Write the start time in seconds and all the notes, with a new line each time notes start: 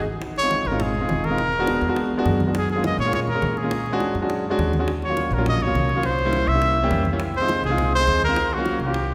0.22 high bongo, high conga
0.36 C#5, high bongo, high conga
0.42 G#3 C4 D#4 F4
0.51 high bongo, high conga
0.65 G#1 A#4, high bongo, high conga
0.71 G#3 C4 D#4 F4
0.80 G#4, high bongo, high conga, low conga
0.95 high conga, low conga
1.01 G#3 C4 D#4 F4
1.08 E1, high bongo, low bongo, high conga
1.24 A#4, high bongo, high conga
1.30 G#3 C4 D#4 F4
1.38 high bongo, high conga
1.53 high bongo, high conga
1.59 G#3 B3 D4 F#4
1.67 high bongo, high conga
1.81 E2, high bongo
1.88 G#3 B3 D4 F#4
1.96 high bongo, high conga
2.11 high conga
2.17 G#3 B3 D4 F#4
2.25 F#2, high bongo, low bongo, high conga
2.40 high bongo, high conga
2.47 G#3 B3 D4 F#4
2.55 G#4, high bongo, high conga
2.69 G#4, high bongo, high conga
2.76 G#3 A#3 C#4 F4
2.84 D#5, high bongo, high conga
2.98 A#2 C#5, high bongo, high conga
3.05 G#3 A#3 C#4 F4
3.13 C#5, high bongo, high conga, low conga
3.27 A#4, high conga, low conga
3.34 G#3 A#3 C#4 G#4
3.42 A#2, high bongo, low bongo, high conga
3.57 G#4, high bongo
3.63 G#3 A#3 C#4 F4
3.71 high bongo, high conga
3.86 high bongo, high conga
3.92 G#3 C#4 D4 F#4
4.00 high bongo, high conga
4.14 F#2, high bongo
4.21 G#3 C#4 D4 F#4
4.29 high bongo, high conga
4.44 high conga
4.50 G#3 C#4 D4 F#4
4.58 D#2, high bongo, low bongo, high conga
4.73 high bongo, high conga
4.79 G#3 C#4 D4 F#4
4.88 high bongo, high conga
5.02 C#5, high bongo, high conga
5.09 F#3 A#3 C#4 F4
5.17 high bongo, high conga
5.30 A#1 A#4, high bongo, high conga
5.37 F#3 A#3 C#4 F4
5.46 D#5, high bongo, high conga, low conga
5.61 C#5, high conga, low conga
5.67 F#3 A#3 C#4 F4
5.74 C2, high bongo, low bongo, high conga
5.89 high bongo
5.96 F#3 A#3 C#4 F4
6.03 C5, high bongo, high conga
6.19 high bongo, high conga
6.25 G3 A#3 C#4 E4
6.33 high bongo, high conga
6.47 C2 E5, high bongo
6.54 G3 A#3 C#4 E4
6.62 high bongo
6.76 high conga
6.83 G3 A#3 C#4 G4
6.90 F2, high bongo, low bongo, high conga
7.05 high bongo, high conga
7.12 G3 A#3 C#4 E4
7.19 high bongo, high conga
7.34 C5, high bongo, high conga
7.41 G#3 C4 D#4 F4
7.48 high bongo, high conga
7.63 C2 G#4, high bongo, high conga
7.70 G#3 C4 D#4 F4
7.78 high bongo, high conga, low conga
7.92 C5, high conga
7.99 G#3 C4 D#4 G#4
8.06 D#2, high bongo, low bongo, high conga
8.22 A#4, high bongo, high conga
8.28 G#3 C4 D#4 F4
8.36 high bongo, high conga
8.51 F#4, high bongo, high conga
8.57 F#3 A#3 C#4 F4
8.65 high bongo, high conga
8.79 C2 G4, high bongo
8.86 F#3 A#3 C#4 F4
8.94 high bongo, high conga
9.09 high conga